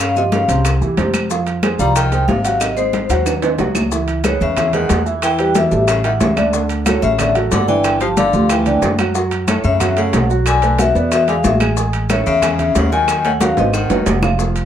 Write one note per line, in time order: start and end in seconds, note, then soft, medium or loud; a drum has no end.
0.00 0.43 G2 medium
0.00 0.10 C#3 medium
0.00 0.16 C#3 medium
0.00 0.10 C#4 medium
0.00 0.10 C#5 medium
0.00 0.17 F5 medium
0.00 high bongo medium
0.00 high conga soft
0.00 claves medium
0.00 maracas medium
0.16 0.24 C3 medium
0.16 0.43 F3 medium
0.16 0.43 F4 medium
0.16 0.43 G4 medium
0.16 0.24 D#5 medium
0.16 high bongo soft
0.16 high conga soft
0.16 maracas soft
0.32 0.63 C#3 medium
0.32 0.63 F5 medium
0.32 high bongo medium
0.32 high conga loud
0.32 high timbale medium
0.32 low timbale medium
0.32 maracas soft
0.48 0.79 C2 medium
0.48 0.76 C3 medium
0.48 0.76 C4 medium
0.48 0.76 C5 medium
0.48 high bongo soft
0.48 high conga soft
0.48 high timbale medium
0.48 maracas medium
0.65 high bongo medium
0.65 high conga soft
0.65 high timbale medium
0.65 claves medium
0.65 maracas medium
0.81 0.96 E2 medium
0.81 0.95 E3 medium
0.81 0.95 E4 medium
0.81 0.95 G4 medium
0.81 high bongo soft
0.81 high conga soft
0.81 maracas soft
0.97 1.74 F2 medium
0.97 1.25 C3 medium
0.97 1.25 C4 medium
0.97 1.25 C5 medium
0.97 high bongo soft
0.97 low bongo medium
0.97 high conga medium
0.97 high timbale medium
0.97 low timbale medium
0.97 maracas soft
1.13 high conga medium
1.13 high timbale medium
1.13 claves medium
1.13 maracas medium
1.30 1.57 F3 medium
1.30 1.57 F4 medium
1.30 1.57 F5 medium
1.30 high bongo medium
1.30 high conga soft
1.30 maracas medium
1.46 high bongo soft
1.46 high conga soft
1.46 high timbale medium
1.46 maracas soft
1.63 1.76 G#3 medium
1.63 1.77 G#4 medium
1.63 1.77 C5 medium
1.63 high bongo medium
1.63 high conga medium
1.63 high timbale medium
1.63 low timbale medium
1.63 claves medium
1.63 maracas soft
1.79 2.25 C2 medium
1.79 2.06 F3 medium
1.79 1.95 G3 medium
1.79 2.06 F4 medium
1.79 2.06 F5 medium
1.79 1.96 A#5 loud
1.79 high bongo soft
1.79 maracas medium
1.95 2.26 D#3 medium
1.95 2.26 G5 loud
1.95 high bongo medium
1.95 high conga soft
1.95 high timbale medium
1.95 claves medium
1.95 maracas medium
2.11 2.39 G#3 medium
2.11 2.39 G#4 medium
2.11 2.39 C5 medium
2.11 high bongo soft
2.11 high conga soft
2.11 high timbale medium
2.11 maracas soft
2.28 3.04 G#1 medium
2.28 2.59 C3 medium
2.28 2.59 F5 medium
2.28 high bongo soft
2.28 low bongo medium
2.28 high conga medium
2.28 low timbale medium
2.28 maracas soft
2.45 2.72 F#3 medium
2.45 2.72 F#4 medium
2.45 2.72 F#5 medium
2.45 high conga soft
2.45 high timbale medium
2.45 maracas medium
2.60 2.76 C3 medium
2.60 2.76 D#5 medium
2.60 high bongo medium
2.60 high conga soft
2.60 high timbale medium
2.60 claves medium
2.60 maracas medium
2.77 3.23 G#2 medium
2.77 3.04 C4 medium
2.77 3.23 C5 medium
2.77 3.04 C5 medium
2.77 3.04 D#5 medium
2.77 high conga soft
2.77 maracas soft
2.93 high bongo medium
2.93 high conga loud
2.93 high timbale medium
2.93 low timbale medium
2.93 maracas soft
3.10 3.55 D#2 medium
3.10 3.37 F#3 medium
3.10 3.37 F#4 medium
3.10 3.37 F#5 medium
3.10 low bongo medium
3.10 high timbale medium
3.10 maracas medium
3.26 low bongo medium
3.26 high conga soft
3.26 high timbale medium
3.26 claves medium
3.26 maracas medium
3.42 3.56 C4 medium
3.42 3.56 C5 medium
3.42 3.57 D#5 medium
3.42 low bongo medium
3.42 high conga soft
3.42 high timbale medium
3.42 maracas soft
3.58 4.35 C#2 medium
3.58 3.86 F#3 medium
3.58 3.86 F#4 medium
3.58 3.86 F#5 medium
3.58 low bongo medium
3.58 high conga medium
3.58 low timbale medium
3.58 maracas soft
3.75 low bongo medium
3.75 high conga medium
3.75 low timbale medium
3.75 claves medium
3.75 maracas medium
3.91 4.19 E3 medium
3.91 4.19 E4 medium
3.91 4.19 E5 medium
3.91 high bongo medium
3.91 high conga soft
3.91 maracas medium
4.08 high conga soft
4.08 high timbale medium
4.08 maracas soft
4.24 4.40 G#2 medium
4.24 4.51 G#3 medium
4.24 4.51 G#4 medium
4.24 4.52 B4 medium
4.24 4.41 C#5 medium
4.24 high bongo medium
4.24 high conga loud
4.24 high timbale medium
4.24 low timbale medium
4.24 claves medium
4.24 maracas medium
4.41 4.87 E2 medium
4.41 4.72 C#3 medium
4.41 4.75 E5 medium
4.41 high bongo soft
4.41 high conga soft
4.41 maracas soft
4.57 4.71 E3 medium
4.57 4.71 E4 medium
4.57 4.71 E5 medium
4.57 high bongo medium
4.57 high conga soft
4.57 low conga medium
4.57 high timbale medium
4.57 claves medium
4.57 maracas medium
4.73 5.04 D#3 medium
4.73 5.00 G#3 medium
4.73 5.00 G#4 medium
4.73 5.00 B4 medium
4.73 5.04 F#5 medium
4.73 high bongo soft
4.73 high conga soft
4.73 low conga medium
4.73 high timbale medium
4.73 maracas soft
4.89 5.66 E2 medium
4.89 high bongo medium
4.89 low bongo medium
4.89 high conga medium
4.89 high timbale medium
4.89 low timbale medium
4.89 maracas medium
5.06 5.33 E3 medium
5.06 5.33 E4 medium
5.06 5.33 E5 medium
5.06 high bongo soft
5.06 high conga soft
5.06 maracas soft
5.22 5.53 E3 medium
5.22 5.53 G5 loud
5.22 high bongo medium
5.22 high conga soft
5.22 high timbale medium
5.22 claves medium
5.22 maracas medium
5.39 5.52 G3 medium
5.39 5.53 G4 medium
5.39 5.53 B4 medium
5.39 high conga soft
5.39 high timbale medium
5.39 maracas soft
5.55 5.86 B2 medium
5.55 5.69 E3 medium
5.55 5.69 E4 medium
5.55 5.69 E5 medium
5.55 5.87 E5 medium
5.55 high bongo medium
5.55 high conga loud
5.55 high timbale medium
5.55 low timbale medium
5.55 maracas medium
5.71 6.17 A1 medium
5.71 5.98 G3 medium
5.71 5.99 G4 medium
5.71 5.99 A4 medium
5.71 high bongo soft
5.71 high conga soft
5.71 maracas soft
5.88 6.03 C#3 medium
5.88 6.03 E5 medium
5.88 high bongo medium
5.88 high conga soft
5.88 high timbale medium
5.88 claves medium
5.88 maracas medium
6.04 6.12 D#3 medium
6.04 6.31 E3 medium
6.04 6.31 E4 medium
6.04 6.31 E5 medium
6.04 6.12 F#5 medium
6.04 high bongo soft
6.04 high conga soft
6.04 high timbale medium
6.04 maracas soft
6.20 6.97 D2 medium
6.20 6.43 C#3 medium
6.20 6.44 E5 medium
6.20 high bongo medium
6.20 low bongo medium
6.20 high conga medium
6.20 low timbale medium
6.20 maracas medium
6.37 6.50 D3 medium
6.37 6.51 D4 medium
6.37 6.51 D5 medium
6.37 high bongo soft
6.37 high conga medium
6.37 high timbale medium
6.37 claves medium
6.37 maracas soft
6.53 6.80 D3 medium
6.53 6.80 D4 medium
6.53 6.80 D5 medium
6.53 high bongo medium
6.53 high conga soft
6.53 maracas medium
6.69 high conga soft
6.69 high timbale medium
6.69 maracas soft
6.86 7.01 A2 medium
6.86 7.13 F#3 medium
6.86 7.13 F#4 medium
6.86 7.13 A4 medium
6.86 7.01 C#5 medium
6.86 high bongo medium
6.86 high conga loud
6.86 high timbale medium
6.86 low timbale medium
6.86 claves medium
6.86 maracas medium
7.02 7.48 A1 medium
7.02 7.33 C#3 medium
7.02 7.33 E5 medium
7.02 high bongo soft
7.02 high conga soft
7.02 maracas soft
7.19 7.32 D3 medium
7.19 7.32 D4 medium
7.19 7.33 D5 medium
7.19 high bongo medium
7.19 high conga soft
7.19 low conga medium
7.19 high timbale medium
7.19 claves medium
7.19 maracas medium
7.35 7.62 F#3 medium
7.35 7.62 F#4 medium
7.35 7.62 A4 medium
7.35 high bongo soft
7.35 high conga soft
7.35 high timbale medium
7.35 maracas soft
7.51 8.28 G1 medium
7.51 7.67 D3 medium
7.51 7.68 F#5 loud
7.51 high bongo medium
7.51 low bongo medium
7.51 high conga medium
7.51 high timbale medium
7.51 low timbale medium
7.51 maracas medium
7.68 7.95 D3 medium
7.68 7.99 E3 medium
7.68 7.95 D4 medium
7.68 7.95 D5 medium
7.68 7.99 G5 loud
7.68 high bongo soft
7.68 high conga soft
7.68 maracas soft
7.84 high bongo medium
7.84 high conga soft
7.84 high timbale medium
7.84 claves medium
7.84 maracas medium
8.01 8.14 F3 medium
8.01 8.08 F3 medium
8.01 8.14 F4 medium
8.01 8.14 G4 medium
8.01 8.08 A5 loud
8.01 high conga soft
8.01 high timbale medium
8.01 maracas soft
8.17 8.30 D3 medium
8.17 8.48 D3 medium
8.17 8.30 D4 medium
8.17 8.31 D5 medium
8.17 8.51 F5 medium
8.17 high bongo medium
8.17 high conga loud
8.17 high timbale medium
8.17 low timbale medium
8.17 maracas medium
8.33 8.79 D2 medium
8.33 8.60 F3 medium
8.33 8.61 F4 medium
8.33 8.61 G4 medium
8.33 high bongo soft
8.33 high conga soft
8.33 maracas soft
8.49 8.96 E3 medium
8.49 8.96 G5 medium
8.49 high bongo medium
8.49 high conga soft
8.49 high timbale medium
8.49 claves medium
8.49 maracas medium
8.66 8.93 D3 medium
8.66 8.93 D4 medium
8.66 8.93 D5 medium
8.66 high bongo soft
8.66 high conga soft
8.66 high timbale medium
8.66 maracas soft
8.82 9.58 F#2 medium
8.82 high bongo medium
8.82 low bongo medium
8.82 high conga medium
8.82 low timbale medium
8.82 maracas medium
8.98 9.12 F#3 medium
8.98 9.12 F#4 medium
8.98 9.12 F#5 medium
8.98 high bongo soft
8.98 high conga medium
8.98 high timbale medium
8.98 claves medium
8.98 maracas soft
9.15 9.42 F#3 medium
9.15 9.42 F#4 medium
9.15 9.42 F#5 medium
9.15 high bongo medium
9.15 high conga soft
9.15 maracas medium
9.31 high conga soft
9.31 high timbale medium
9.31 maracas soft
9.48 9.63 A2 medium
9.48 9.75 A3 medium
9.48 9.75 A4 medium
9.48 9.75 C#5 medium
9.48 9.65 C#5 medium
9.48 high bongo medium
9.48 high conga medium
9.48 high timbale loud
9.48 low timbale medium
9.48 claves medium
9.48 maracas medium
9.64 10.10 F#2 medium
9.64 9.95 C#3 medium
9.64 9.95 E5 medium
9.64 high bongo soft
9.64 high conga soft
9.64 maracas soft
9.80 9.94 F#3 medium
9.80 9.94 F#4 medium
9.80 9.94 F#5 medium
9.80 high bongo medium
9.80 high conga soft
9.80 low conga medium
9.80 high timbale medium
9.80 claves medium
9.80 maracas medium
9.97 10.28 C#3 medium
9.97 10.24 A3 medium
9.97 10.24 A4 medium
9.97 10.24 C#5 medium
9.97 10.28 F#5 medium
9.97 high bongo soft
9.97 high conga soft
9.97 high timbale medium
9.97 maracas soft
10.13 10.90 B1 medium
10.13 high bongo medium
10.13 low bongo medium
10.13 high conga medium
10.13 high timbale medium
10.13 low timbale medium
10.13 maracas medium
10.30 10.57 F#3 medium
10.30 10.57 F#4 medium
10.30 10.57 F#5 medium
10.30 high bongo soft
10.30 high conga soft
10.30 maracas soft
10.46 10.77 D3 medium
10.46 10.77 G#5 loud
10.46 high bongo medium
10.46 high conga soft
10.46 high timbale medium
10.46 claves medium
10.46 maracas medium
10.62 10.76 A3 medium
10.62 10.76 A4 medium
10.62 10.76 B4 medium
10.62 high conga soft
10.62 high timbale medium
10.62 maracas soft
10.79 11.10 B2 medium
10.79 10.92 F#3 medium
10.79 10.93 F#4 medium
10.79 11.12 E5 loud
10.79 10.93 F#5 medium
10.79 high bongo medium
10.79 high conga loud
10.79 high timbale medium
10.79 low timbale medium
10.79 maracas medium
10.95 11.41 E2 medium
10.95 11.22 B3 medium
10.95 11.22 B4 medium
10.95 11.22 D5 medium
10.95 high bongo soft
10.95 high conga soft
10.95 maracas soft
11.11 11.27 B2 medium
11.11 11.29 E5 loud
11.11 high bongo medium
11.11 high conga soft
11.11 high timbale medium
11.11 claves medium
11.11 maracas medium
11.28 11.36 D3 medium
11.28 11.55 G#3 medium
11.28 11.55 G#4 medium
11.28 11.37 F5 medium
11.28 11.55 G#5 medium
11.28 high bongo soft
11.28 high conga soft
11.28 high timbale medium
11.28 maracas soft
11.44 12.21 A1 medium
11.44 11.68 B2 medium
11.44 11.67 E5 medium
11.44 high bongo medium
11.44 low bongo medium
11.44 high conga medium
11.44 low timbale medium
11.44 maracas medium
11.60 11.74 G#3 medium
11.60 11.74 G#4 medium
11.60 11.75 G#5 medium
11.60 high bongo soft
11.60 high conga medium
11.60 high timbale medium
11.60 claves medium
11.60 maracas soft
11.77 12.04 G#3 medium
11.77 12.04 G#4 medium
11.77 12.04 G#5 medium
11.77 high bongo medium
11.77 high conga soft
11.77 maracas medium
11.93 high conga soft
11.93 high timbale medium
11.93 maracas soft
12.10 12.25 A2 medium
12.10 12.37 C#4 medium
12.10 12.37 C#5 medium
12.10 12.27 C#5 medium
12.10 12.37 E5 medium
12.10 high bongo medium
12.10 high conga loud
12.10 high timbale loud
12.10 low timbale medium
12.10 claves medium
12.10 maracas medium
12.26 12.72 E2 medium
12.26 12.72 C#3 medium
12.26 12.77 E5 medium
12.26 high bongo soft
12.26 high conga soft
12.26 maracas soft
12.42 12.56 G#3 medium
12.42 12.56 G#4 medium
12.42 12.56 G#5 medium
12.42 high bongo medium
12.42 high conga soft
12.42 low conga medium
12.42 high timbale medium
12.42 claves medium
12.42 maracas medium
12.59 12.86 C#4 medium
12.59 12.86 C#5 medium
12.59 12.86 E5 medium
12.59 high bongo soft
12.59 high conga soft
12.59 low conga medium
12.59 high timbale medium
12.59 maracas soft
12.75 13.52 D#2 medium
12.75 12.91 C#3 medium
12.75 12.91 F#5 loud
12.75 high bongo medium
12.75 low bongo medium
12.75 high conga medium
12.75 high timbale medium
12.75 low timbale medium
12.75 maracas medium
12.92 13.22 D#3 medium
12.92 13.19 F#3 medium
12.92 13.19 F#4 medium
12.92 13.19 F#5 medium
12.92 13.26 G#5 loud
12.92 high bongo soft
12.92 maracas soft
13.08 high bongo medium
13.08 high conga soft
13.08 high timbale medium
13.08 claves medium
13.08 maracas medium
13.25 13.32 D#3 medium
13.25 13.38 A3 medium
13.25 13.38 A4 medium
13.25 13.38 C#5 medium
13.25 13.33 F#5 medium
13.25 high conga soft
13.25 high timbale medium
13.25 maracas soft
13.40 13.56 C#3 medium
13.40 13.55 F#3 medium
13.40 13.55 F#4 medium
13.40 13.57 F5 loud
13.40 13.55 F#5 medium
13.40 high bongo loud
13.40 high conga loud
13.40 high timbale medium
13.40 low timbale medium
13.40 maracas medium
13.57 13.88 G#1 loud
13.57 13.73 B2 medium
13.57 13.84 C4 medium
13.57 13.85 C5 medium
13.57 13.85 D#5 medium
13.57 13.75 D#5 medium
13.57 high bongo medium
13.57 high conga soft
13.57 high timbale medium
13.57 maracas soft
13.73 14.19 D#3 medium
13.73 14.20 F#5 medium
13.73 high bongo medium
13.73 high conga soft
13.73 claves medium
13.73 maracas medium
13.90 14.05 F#1 medium
13.90 14.17 F#3 medium
13.90 14.17 F#4 medium
13.90 14.18 F#5 medium
13.90 low bongo loud
13.90 high conga medium
13.90 high timbale medium
13.90 maracas soft
14.06 14.65 F1 medium
14.06 low bongo medium
14.06 high conga medium
14.06 low timbale loud
14.06 maracas medium
14.23 14.37 F3 medium
14.23 14.37 F4 medium
14.23 14.37 F5 medium
14.23 low bongo medium
14.23 low conga medium
14.23 low timbale medium
14.23 claves medium
14.23 maracas soft
14.39 14.65 F3 medium
14.39 14.65 F4 medium
14.39 14.65 F5 medium
14.39 high bongo medium
14.39 high conga soft
14.39 maracas medium
14.56 high conga soft
14.56 high timbale medium
14.56 maracas soft